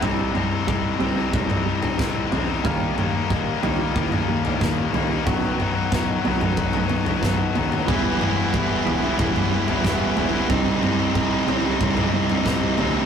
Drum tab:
SD |------------o---|------------o---|----o-------o---|------------o---|
T2 |--o------o------|--o------o------|--o----o-o--o---|--o------o------|
FT |o-----o-o--o--o-|o-----o-o--o--o-|o-----o-o-oo--oo|o-----o-o--o--o-|
BD |o---o---o---o---|o---o---o---o---|o---o---o---o---|o---o---o---o---|

SD |------------o---|
T2 |--o------o------|
FT |o-----o-o--o--o-|
BD |o---o---o---o---|